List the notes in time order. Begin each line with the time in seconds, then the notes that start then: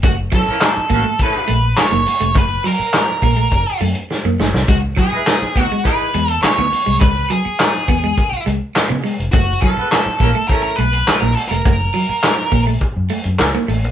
0.03 F#1 A3 F#4, kick, closed hi-hat
0.32 E3 F#3 A3 C#4 A4, kick, closed hi-hat
0.46 E3 A#3 C#4 A#4, muted clean electric guitar stroke, muted fingered electric bass stroke
0.60 muted clean electric guitar stroke, snare, clap, closed hi-hat
0.77 muted fingered electric bass stroke
0.90 A1 C#3 F#3 A#3 F#4, kick, closed hi-hat
1.04 A3
1.19 E3 A3 C#4 A4 B4, kick, closed hi-hat
1.47 A#1 A3, closed hi-hat
1.77 C#5, snare, clap, closed hi-hat
1.91 F#1 A#3
2.07 muted clean electric guitar stroke, open hi-hat
2.21 F1 A3, closed hi-hat
2.35 F#1 A3 B4, kick, closed hi-hat
2.64 F#3 A#4, open hi-hat
2.79 muted clean electric guitar stroke, muted fingered electric bass stroke
2.93 muted clean electric guitar stroke, snare, clap, closed hi-hat
3.22 A#1 A#3, kick, open hi-hat
3.37 A3
3.52 F#1, kick, closed hi-hat
3.80 F#2 A3, open hi-hat
3.95 closed hi-hat
4.11 muted clean electric guitar stroke, snare
4.25 F#2 A#3
4.39 F#1 A3, snare
4.54 C2, snare
4.68 C#2 G#3 F#4, kick, closed hi-hat
4.96 E3 F#3 G#3 D#4 G#4, kick, closed hi-hat
5.12 G#3 B3 E4 B4, muted clean electric guitar stroke, muted fingered electric bass stroke
5.26 muted clean electric guitar stroke, snare, clap, closed hi-hat
5.42 muted fingered electric bass stroke
5.56 D2 F#3 B3 D#4 F#4, kick, closed hi-hat
5.63 F#4
5.72 G#3
5.84 E3 G#3 D#4 G#4 B4, kick, closed hi-hat
6.14 E2 G#3, closed hi-hat
6.28 closed hi-hat
6.42 C#5, muted fingered electric bass stroke, snare, clap, closed hi-hat
6.58 D2 B3
6.72 muted clean electric guitar stroke, open hi-hat
6.86 C2 G#3
7.00 C#2 G#3 B4, kick, closed hi-hat
7.30 F#3 G#4, closed hi-hat
7.45 muted clean electric guitar stroke, muted fingered electric bass stroke
7.59 muted clean electric guitar stroke, snare, clap, closed hi-hat
7.88 E2 B3, kick, closed hi-hat
8.04 G#3
8.18 kick, closed hi-hat
8.32 muted fingered electric bass stroke
8.46 C#2 G#3, closed hi-hat
8.75 muted clean electric guitar stroke, snare, clap, closed hi-hat
8.89 C#3 B3
9.04 G#3, open hi-hat
9.20 F1, closed hi-hat
9.32 F#1 A3 F#4, kick, closed hi-hat
9.61 E3 F#3 A#3 C#4 A4 A#4, kick, closed hi-hat
9.77 B3 G#4 B4, muted fingered electric bass stroke, muted clean electric guitar stroke
9.91 muted clean electric guitar stroke, snare, clap, closed hi-hat
10.06 muted fingered electric bass stroke
10.20 A#1 E3 A#3 C#4 A#4, kick, closed hi-hat
10.35 A3
10.48 E3 A3 C#4 A4 A#4, kick, closed hi-hat
10.63 A#4
10.76 B1 A3 B4, closed hi-hat
10.93 closed hi-hat
11.07 snare, clap, closed hi-hat
11.20 A#1 A#3 A#4
11.35 A4, muted clean electric guitar stroke, open hi-hat
11.49 F1 A3 A#4, closed hi-hat
11.65 F#1 A3, kick, closed hi-hat
11.94 F#3, open hi-hat
12.09 muted fingered electric bass stroke, muted clean electric guitar stroke
12.23 muted clean electric guitar stroke, snare, clap, closed hi-hat
12.52 A#1 A#3, kick, open hi-hat
12.67 A3
12.81 kick, closed hi-hat
12.97 F#2
13.09 A3, open hi-hat
13.24 F#2, closed hi-hat
13.39 C#2, muted clean electric guitar stroke, snare, clap, closed hi-hat
13.55 A#3
13.68 A1 A3, open hi-hat
13.84 A#1, closed hi-hat